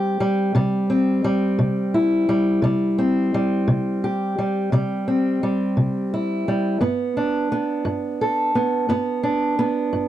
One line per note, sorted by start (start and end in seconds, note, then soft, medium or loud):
0.00 0.14 C3 medium
0.00 0.20 G3 medium
0.00 0.89 C4 medium
0.00 1.94 G4 medium
0.20 0.55 G3 medium
0.55 1.18 C3 medium
0.55 1.24 G3 medium
0.90 2.59 C4 medium
1.24 2.28 G3 medium
1.59 2.22 C3 medium
1.94 4.03 E4 soft
2.29 2.63 G3 medium
2.62 3.25 C3 medium
2.62 3.34 G3 medium
2.98 5.06 C4 medium
3.34 4.38 G3 medium
3.68 4.30 C3 medium
4.04 6.13 G4 medium
4.39 4.73 G3 soft
4.72 5.35 C3 medium
4.72 5.43 G3 medium
5.08 6.77 C4 soft
5.43 6.48 G3 medium
5.77 6.39 C3 medium
6.14 6.82 E4 medium
6.48 6.81 G3 medium
6.80 7.43 G2 medium
6.80 7.51 B3 medium
7.17 9.22 D4 medium
7.52 8.55 B3 medium
7.85 8.47 G2 medium
8.21 10.08 A4 medium
8.55 8.89 B3 soft
8.89 9.52 G2 medium
8.89 9.58 B3 medium
9.23 10.08 D4 soft
9.59 10.08 B3 medium
9.93 10.08 G2 medium